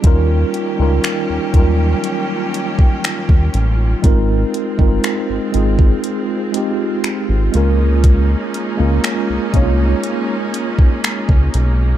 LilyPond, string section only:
\new Staff \with { instrumentName = "String section" } { \time 4/4 \key ees \mixolydian \tempo 4 = 60 <ees bes des' f' g'>1 | <aes c'>2.~ <aes c'>8 <aes bes des' ees'>8~ | <aes bes des' ees'>1 | }